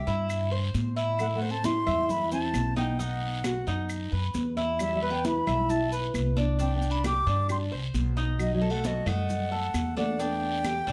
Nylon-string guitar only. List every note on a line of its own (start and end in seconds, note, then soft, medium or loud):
0.00 0.25 G3 medium
1.20 1.25 A3 medium
1.35 1.50 A3 medium
1.50 1.65 C4 medium
1.65 2.08 E4 medium
2.10 2.32 E4 medium
2.32 2.74 C4 medium
2.77 2.98 B3 medium
3.00 3.90 B3 medium
4.80 4.94 G3 medium
4.95 5.10 G3 medium
5.10 5.25 B3 medium
5.25 5.68 E4 medium
5.70 5.92 E4 medium
6.61 6.74 C4 medium
6.76 6.91 B3 medium
6.91 7.05 D4 medium
7.05 7.47 G4 medium
7.50 7.56 G4 medium
8.39 8.53 F#3 medium
8.54 8.70 F#3 medium
8.70 8.85 A3 medium
8.85 9.07 F#3 medium
9.07 9.96 A3 medium
9.97 10.20 A3 medium
10.20 10.92 B3 medium